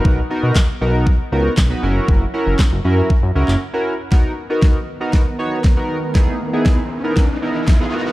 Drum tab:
CP |----x-------x---|----x------x----|----------------|----------------|
SD |----o-------o---|----o-----------|o---o---o---o---|o---o---o---o---|
BD |o---o---o---o---|o---o---o-------|o---o---o---o---|o---o---o---o---|